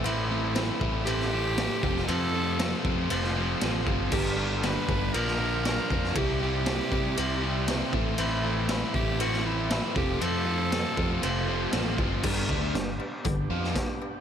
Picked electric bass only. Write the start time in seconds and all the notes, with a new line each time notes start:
0.05 A1
0.81 A1
1.83 F1
2.09 F2
2.85 F2
3.11 F1
3.62 A1
3.87 G1
4.12 G1
4.88 G1
5.15 A#1
5.91 F2
6.16 C2
6.92 C3
7.18 C2
7.93 A1
8.19 A1
8.94 A1
9.96 F1
10.21 F2
10.98 F2
11.23 F1
11.74 A1
11.99 G1
12.24 G1
12.49 D2
12.75 G1
13.25 G1
13.51 F2